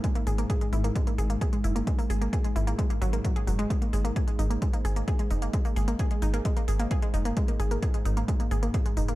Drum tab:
HH |xxoxxxoxxxoxxxox|xooxxxoxxxoxxxox|xxoxxxoxxxoxxxox|xooxxxoxxxoxxxox|
BD |o---o---o---o---|o---o---o---o---|o---o---o---o---|o---o---o---o---|

HH |xxoxxxoxxxoxxxox|
BD |o---o---o---o---|